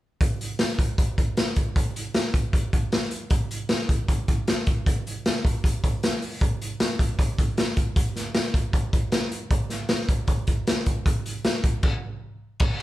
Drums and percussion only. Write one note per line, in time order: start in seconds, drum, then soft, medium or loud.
0.21 kick loud
0.21 closed hi-hat medium
0.41 closed hi-hat medium
0.59 snare loud
0.59 closed hi-hat medium
0.79 kick medium
0.79 closed hi-hat medium
0.98 kick medium
0.98 closed hi-hat medium
1.18 kick medium
1.18 closed hi-hat medium
1.37 snare loud
1.37 closed hi-hat medium
1.56 kick medium
1.56 closed hi-hat medium
1.76 kick loud
1.76 closed hi-hat medium
1.96 closed hi-hat medium
2.14 snare loud
2.14 closed hi-hat medium
2.34 kick medium
2.34 closed hi-hat medium
2.53 kick medium
2.53 closed hi-hat medium
2.73 kick medium
2.73 closed hi-hat medium
2.92 snare loud
2.92 closed hi-hat medium
3.11 closed hi-hat medium
3.30 kick loud
3.30 closed hi-hat medium
3.51 closed hi-hat medium
3.69 snare loud
3.69 closed hi-hat medium
3.89 kick medium
3.89 closed hi-hat medium
4.08 kick medium
4.08 closed hi-hat medium
4.28 kick medium
4.28 closed hi-hat medium
4.47 snare loud
4.47 closed hi-hat medium
4.67 kick medium
4.67 closed hi-hat medium
4.86 kick medium
4.86 closed hi-hat medium
5.07 closed hi-hat medium
5.26 snare loud
5.26 closed hi-hat medium
5.45 kick medium
5.45 closed hi-hat medium
5.64 kick medium
5.64 closed hi-hat medium
5.84 kick medium
5.84 closed hi-hat medium
6.03 snare loud
6.03 closed hi-hat medium
6.22 open hi-hat medium
6.41 kick medium
6.41 closed hi-hat medium
6.62 closed hi-hat medium
6.80 snare loud
6.80 closed hi-hat medium
6.99 kick medium
6.99 closed hi-hat medium
7.19 kick medium
7.19 closed hi-hat medium
7.38 kick medium
7.38 closed hi-hat medium
7.57 snare loud
7.57 closed hi-hat medium
7.77 kick medium
7.77 closed hi-hat medium
7.96 kick medium
7.96 closed hi-hat medium
8.16 snare soft
8.16 closed hi-hat medium
8.34 snare loud
8.34 closed hi-hat medium
8.54 kick medium
8.54 closed hi-hat medium
8.73 kick medium
8.73 closed hi-hat medium
8.93 kick medium
8.93 closed hi-hat medium
9.12 snare loud
9.12 closed hi-hat medium
9.32 closed hi-hat medium
9.51 kick loud
9.51 closed hi-hat medium
9.70 snare soft
9.70 closed hi-hat medium
9.89 snare loud
9.89 closed hi-hat medium
10.09 kick medium
10.09 closed hi-hat medium
10.27 kick medium
10.27 closed hi-hat medium
10.47 kick medium
10.47 closed hi-hat medium
10.67 snare loud
10.67 closed hi-hat medium
10.86 kick medium
10.86 closed hi-hat medium
11.06 kick loud
11.06 closed hi-hat medium
11.26 closed hi-hat medium
11.44 snare loud
11.44 closed hi-hat medium
11.64 kick medium
11.64 closed hi-hat medium
11.83 kick medium
11.83 crash medium
12.60 kick loud
12.60 crash medium